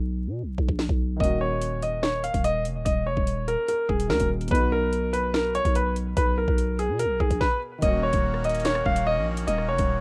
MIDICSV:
0, 0, Header, 1, 6, 480
1, 0, Start_track
1, 0, Key_signature, -6, "minor"
1, 0, Tempo, 413793
1, 1394, Time_signature, 4, 2, 24, 8
1, 11606, End_track
2, 0, Start_track
2, 0, Title_t, "Grand piano"
2, 0, Program_c, 0, 0
2, 1395, Note_on_c, 0, 75, 81
2, 1606, Note_off_c, 0, 75, 0
2, 1635, Note_on_c, 0, 73, 77
2, 2086, Note_off_c, 0, 73, 0
2, 2119, Note_on_c, 0, 75, 72
2, 2328, Note_off_c, 0, 75, 0
2, 2352, Note_on_c, 0, 73, 86
2, 2564, Note_off_c, 0, 73, 0
2, 2594, Note_on_c, 0, 77, 77
2, 2805, Note_off_c, 0, 77, 0
2, 2834, Note_on_c, 0, 75, 89
2, 3045, Note_off_c, 0, 75, 0
2, 3309, Note_on_c, 0, 75, 78
2, 3523, Note_off_c, 0, 75, 0
2, 3555, Note_on_c, 0, 73, 77
2, 4006, Note_off_c, 0, 73, 0
2, 4036, Note_on_c, 0, 70, 87
2, 4246, Note_off_c, 0, 70, 0
2, 4274, Note_on_c, 0, 70, 81
2, 4485, Note_off_c, 0, 70, 0
2, 4510, Note_on_c, 0, 68, 72
2, 4723, Note_off_c, 0, 68, 0
2, 4753, Note_on_c, 0, 70, 92
2, 4964, Note_off_c, 0, 70, 0
2, 5232, Note_on_c, 0, 71, 86
2, 5444, Note_off_c, 0, 71, 0
2, 5476, Note_on_c, 0, 70, 89
2, 5927, Note_off_c, 0, 70, 0
2, 5951, Note_on_c, 0, 71, 80
2, 6163, Note_off_c, 0, 71, 0
2, 6193, Note_on_c, 0, 70, 88
2, 6404, Note_off_c, 0, 70, 0
2, 6438, Note_on_c, 0, 73, 85
2, 6647, Note_off_c, 0, 73, 0
2, 6678, Note_on_c, 0, 71, 79
2, 6887, Note_off_c, 0, 71, 0
2, 7154, Note_on_c, 0, 71, 84
2, 7365, Note_off_c, 0, 71, 0
2, 7397, Note_on_c, 0, 70, 77
2, 7847, Note_off_c, 0, 70, 0
2, 7876, Note_on_c, 0, 68, 84
2, 8086, Note_off_c, 0, 68, 0
2, 8113, Note_on_c, 0, 70, 89
2, 8324, Note_off_c, 0, 70, 0
2, 8353, Note_on_c, 0, 68, 82
2, 8564, Note_off_c, 0, 68, 0
2, 8591, Note_on_c, 0, 71, 91
2, 8804, Note_off_c, 0, 71, 0
2, 9076, Note_on_c, 0, 75, 85
2, 9286, Note_off_c, 0, 75, 0
2, 9316, Note_on_c, 0, 73, 78
2, 9766, Note_off_c, 0, 73, 0
2, 9800, Note_on_c, 0, 75, 77
2, 10008, Note_off_c, 0, 75, 0
2, 10035, Note_on_c, 0, 73, 86
2, 10246, Note_off_c, 0, 73, 0
2, 10277, Note_on_c, 0, 77, 79
2, 10487, Note_off_c, 0, 77, 0
2, 10517, Note_on_c, 0, 75, 94
2, 10727, Note_off_c, 0, 75, 0
2, 10988, Note_on_c, 0, 75, 83
2, 11202, Note_off_c, 0, 75, 0
2, 11235, Note_on_c, 0, 73, 76
2, 11606, Note_off_c, 0, 73, 0
2, 11606, End_track
3, 0, Start_track
3, 0, Title_t, "Felt piano"
3, 0, Program_c, 1, 0
3, 1351, Note_on_c, 1, 51, 68
3, 1381, Note_on_c, 1, 58, 66
3, 1413, Note_on_c, 1, 61, 61
3, 1443, Note_on_c, 1, 66, 74
3, 1636, Control_c, 1, 64, 127
3, 4686, Note_off_c, 1, 51, 0
3, 4701, Note_off_c, 1, 58, 0
3, 4717, Note_off_c, 1, 61, 0
3, 4728, Note_on_c, 1, 51, 53
3, 4732, Note_off_c, 1, 66, 0
3, 4743, Note_on_c, 1, 58, 46
3, 4759, Note_on_c, 1, 61, 50
3, 4774, Note_on_c, 1, 66, 55
3, 5191, Note_on_c, 1, 47, 70
3, 5221, Note_off_c, 1, 51, 0
3, 5223, Note_on_c, 1, 59, 62
3, 5229, Note_off_c, 1, 58, 0
3, 5237, Note_off_c, 1, 61, 0
3, 5244, Note_off_c, 1, 66, 0
3, 5251, Control_c, 1, 64, 0
3, 5253, Note_on_c, 1, 63, 60
3, 5284, Note_on_c, 1, 66, 78
3, 5448, Control_c, 1, 64, 127
3, 8608, Control_c, 1, 64, 0
3, 9006, Note_off_c, 1, 47, 0
3, 9022, Note_off_c, 1, 59, 0
3, 9030, Note_on_c, 1, 51, 70
3, 9037, Note_off_c, 1, 63, 0
3, 9053, Note_off_c, 1, 66, 0
3, 9061, Note_on_c, 1, 58, 68
3, 9092, Note_on_c, 1, 61, 60
3, 9122, Note_on_c, 1, 66, 74
3, 9294, Control_c, 1, 64, 127
3, 11606, Note_off_c, 1, 51, 0
3, 11606, Note_off_c, 1, 58, 0
3, 11606, Note_off_c, 1, 61, 0
3, 11606, Note_off_c, 1, 66, 0
3, 11606, End_track
4, 0, Start_track
4, 0, Title_t, "Accordion"
4, 0, Program_c, 2, 21
4, 9074, Note_on_c, 2, 58, 77
4, 9074, Note_on_c, 2, 61, 73
4, 9074, Note_on_c, 2, 66, 89
4, 9075, Note_on_c, 2, 51, 83
4, 11606, Note_off_c, 2, 51, 0
4, 11606, Note_off_c, 2, 58, 0
4, 11606, Note_off_c, 2, 61, 0
4, 11606, Note_off_c, 2, 66, 0
4, 11606, End_track
5, 0, Start_track
5, 0, Title_t, "808-style bass"
5, 0, Program_c, 3, 38
5, 0, Note_on_c, 3, 35, 105
5, 314, Note_on_c, 3, 47, 101
5, 331, Note_off_c, 3, 35, 0
5, 494, Note_on_c, 3, 35, 94
5, 511, Note_off_c, 3, 47, 0
5, 665, Note_off_c, 3, 35, 0
5, 674, Note_on_c, 3, 35, 107
5, 789, Note_off_c, 3, 35, 0
5, 795, Note_on_c, 3, 34, 101
5, 1025, Note_off_c, 3, 34, 0
5, 1034, Note_on_c, 3, 35, 106
5, 1380, Note_off_c, 3, 35, 0
5, 1394, Note_on_c, 3, 27, 114
5, 2668, Note_off_c, 3, 27, 0
5, 2715, Note_on_c, 3, 27, 104
5, 3075, Note_on_c, 3, 29, 98
5, 3093, Note_off_c, 3, 27, 0
5, 3195, Note_on_c, 3, 27, 101
5, 3212, Note_off_c, 3, 29, 0
5, 3308, Note_off_c, 3, 27, 0
5, 3314, Note_on_c, 3, 27, 106
5, 3554, Note_on_c, 3, 29, 97
5, 3571, Note_off_c, 3, 27, 0
5, 3668, Note_off_c, 3, 29, 0
5, 3676, Note_on_c, 3, 27, 103
5, 4136, Note_off_c, 3, 27, 0
5, 4515, Note_on_c, 3, 27, 112
5, 4754, Note_on_c, 3, 39, 105
5, 4772, Note_off_c, 3, 27, 0
5, 4868, Note_off_c, 3, 39, 0
5, 4875, Note_on_c, 3, 27, 107
5, 5220, Note_off_c, 3, 27, 0
5, 5235, Note_on_c, 3, 35, 114
5, 6508, Note_off_c, 3, 35, 0
5, 6554, Note_on_c, 3, 35, 105
5, 7130, Note_off_c, 3, 35, 0
5, 7155, Note_on_c, 3, 35, 111
5, 7500, Note_off_c, 3, 35, 0
5, 7515, Note_on_c, 3, 35, 104
5, 7994, Note_on_c, 3, 47, 102
5, 8012, Note_off_c, 3, 35, 0
5, 8175, Note_on_c, 3, 35, 96
5, 8192, Note_off_c, 3, 47, 0
5, 8346, Note_off_c, 3, 35, 0
5, 8354, Note_on_c, 3, 35, 107
5, 8469, Note_off_c, 3, 35, 0
5, 8475, Note_on_c, 3, 34, 104
5, 8590, Note_off_c, 3, 34, 0
5, 9074, Note_on_c, 3, 27, 118
5, 9420, Note_off_c, 3, 27, 0
5, 9435, Note_on_c, 3, 27, 102
5, 10241, Note_off_c, 3, 27, 0
5, 10274, Note_on_c, 3, 27, 108
5, 10634, Note_on_c, 3, 34, 106
5, 10652, Note_off_c, 3, 27, 0
5, 10976, Note_off_c, 3, 34, 0
5, 10994, Note_on_c, 3, 27, 110
5, 11233, Note_on_c, 3, 29, 98
5, 11251, Note_off_c, 3, 27, 0
5, 11348, Note_off_c, 3, 29, 0
5, 11355, Note_on_c, 3, 27, 105
5, 11606, Note_off_c, 3, 27, 0
5, 11606, End_track
6, 0, Start_track
6, 0, Title_t, "Drums"
6, 674, Note_on_c, 9, 36, 91
6, 790, Note_off_c, 9, 36, 0
6, 795, Note_on_c, 9, 36, 97
6, 911, Note_off_c, 9, 36, 0
6, 915, Note_on_c, 9, 38, 109
6, 1031, Note_off_c, 9, 38, 0
6, 1034, Note_on_c, 9, 36, 93
6, 1150, Note_off_c, 9, 36, 0
6, 1394, Note_on_c, 9, 36, 114
6, 1434, Note_on_c, 9, 42, 78
6, 1510, Note_off_c, 9, 36, 0
6, 1550, Note_off_c, 9, 42, 0
6, 1874, Note_on_c, 9, 42, 82
6, 1990, Note_off_c, 9, 42, 0
6, 2117, Note_on_c, 9, 42, 76
6, 2233, Note_off_c, 9, 42, 0
6, 2355, Note_on_c, 9, 38, 126
6, 2471, Note_off_c, 9, 38, 0
6, 2596, Note_on_c, 9, 42, 74
6, 2712, Note_off_c, 9, 42, 0
6, 2715, Note_on_c, 9, 36, 95
6, 2716, Note_on_c, 9, 42, 71
6, 2831, Note_off_c, 9, 36, 0
6, 2832, Note_off_c, 9, 42, 0
6, 2833, Note_on_c, 9, 42, 77
6, 2949, Note_off_c, 9, 42, 0
6, 3074, Note_on_c, 9, 42, 82
6, 3190, Note_off_c, 9, 42, 0
6, 3314, Note_on_c, 9, 42, 82
6, 3315, Note_on_c, 9, 36, 118
6, 3430, Note_off_c, 9, 42, 0
6, 3431, Note_off_c, 9, 36, 0
6, 3676, Note_on_c, 9, 36, 102
6, 3792, Note_off_c, 9, 36, 0
6, 3794, Note_on_c, 9, 42, 85
6, 3910, Note_off_c, 9, 42, 0
6, 4037, Note_on_c, 9, 42, 73
6, 4153, Note_off_c, 9, 42, 0
6, 4273, Note_on_c, 9, 42, 96
6, 4389, Note_off_c, 9, 42, 0
6, 4514, Note_on_c, 9, 36, 89
6, 4630, Note_off_c, 9, 36, 0
6, 4636, Note_on_c, 9, 42, 70
6, 4752, Note_off_c, 9, 42, 0
6, 4755, Note_on_c, 9, 38, 114
6, 4867, Note_on_c, 9, 42, 89
6, 4871, Note_off_c, 9, 38, 0
6, 4875, Note_on_c, 9, 36, 92
6, 4983, Note_off_c, 9, 42, 0
6, 4991, Note_off_c, 9, 36, 0
6, 5115, Note_on_c, 9, 42, 49
6, 5195, Note_off_c, 9, 42, 0
6, 5195, Note_on_c, 9, 42, 66
6, 5235, Note_on_c, 9, 36, 117
6, 5275, Note_off_c, 9, 42, 0
6, 5275, Note_on_c, 9, 42, 77
6, 5351, Note_off_c, 9, 36, 0
6, 5391, Note_off_c, 9, 42, 0
6, 5715, Note_on_c, 9, 42, 83
6, 5831, Note_off_c, 9, 42, 0
6, 5957, Note_on_c, 9, 42, 76
6, 6073, Note_off_c, 9, 42, 0
6, 6195, Note_on_c, 9, 38, 121
6, 6311, Note_off_c, 9, 38, 0
6, 6436, Note_on_c, 9, 42, 73
6, 6552, Note_off_c, 9, 42, 0
6, 6555, Note_on_c, 9, 36, 96
6, 6556, Note_on_c, 9, 42, 70
6, 6671, Note_off_c, 9, 36, 0
6, 6672, Note_off_c, 9, 42, 0
6, 6673, Note_on_c, 9, 42, 76
6, 6789, Note_off_c, 9, 42, 0
6, 6915, Note_on_c, 9, 42, 80
6, 7031, Note_off_c, 9, 42, 0
6, 7154, Note_on_c, 9, 36, 117
6, 7154, Note_on_c, 9, 42, 83
6, 7270, Note_off_c, 9, 36, 0
6, 7270, Note_off_c, 9, 42, 0
6, 7515, Note_on_c, 9, 36, 105
6, 7631, Note_off_c, 9, 36, 0
6, 7634, Note_on_c, 9, 42, 84
6, 7750, Note_off_c, 9, 42, 0
6, 7877, Note_on_c, 9, 42, 73
6, 7993, Note_off_c, 9, 42, 0
6, 8113, Note_on_c, 9, 42, 95
6, 8229, Note_off_c, 9, 42, 0
6, 8354, Note_on_c, 9, 36, 88
6, 8470, Note_off_c, 9, 36, 0
6, 8474, Note_on_c, 9, 36, 96
6, 8475, Note_on_c, 9, 42, 72
6, 8590, Note_off_c, 9, 36, 0
6, 8591, Note_off_c, 9, 42, 0
6, 8594, Note_on_c, 9, 36, 109
6, 8594, Note_on_c, 9, 38, 93
6, 8710, Note_off_c, 9, 36, 0
6, 8710, Note_off_c, 9, 38, 0
6, 9073, Note_on_c, 9, 42, 84
6, 9074, Note_on_c, 9, 36, 116
6, 9189, Note_off_c, 9, 42, 0
6, 9190, Note_off_c, 9, 36, 0
6, 9429, Note_on_c, 9, 42, 76
6, 9435, Note_on_c, 9, 36, 104
6, 9545, Note_off_c, 9, 42, 0
6, 9551, Note_off_c, 9, 36, 0
6, 9673, Note_on_c, 9, 37, 68
6, 9789, Note_off_c, 9, 37, 0
6, 9793, Note_on_c, 9, 42, 71
6, 9853, Note_off_c, 9, 42, 0
6, 9853, Note_on_c, 9, 42, 61
6, 9913, Note_off_c, 9, 42, 0
6, 9913, Note_on_c, 9, 42, 54
6, 9973, Note_off_c, 9, 42, 0
6, 9973, Note_on_c, 9, 42, 42
6, 10032, Note_off_c, 9, 42, 0
6, 10032, Note_on_c, 9, 42, 100
6, 10034, Note_on_c, 9, 38, 122
6, 10148, Note_off_c, 9, 42, 0
6, 10150, Note_off_c, 9, 38, 0
6, 10153, Note_on_c, 9, 37, 96
6, 10269, Note_off_c, 9, 37, 0
6, 10274, Note_on_c, 9, 36, 92
6, 10390, Note_off_c, 9, 36, 0
6, 10395, Note_on_c, 9, 42, 73
6, 10511, Note_off_c, 9, 42, 0
6, 10870, Note_on_c, 9, 42, 86
6, 10986, Note_off_c, 9, 42, 0
6, 10993, Note_on_c, 9, 42, 85
6, 11109, Note_off_c, 9, 42, 0
6, 11115, Note_on_c, 9, 37, 61
6, 11231, Note_off_c, 9, 37, 0
6, 11349, Note_on_c, 9, 42, 75
6, 11355, Note_on_c, 9, 36, 107
6, 11465, Note_off_c, 9, 42, 0
6, 11471, Note_off_c, 9, 36, 0
6, 11606, End_track
0, 0, End_of_file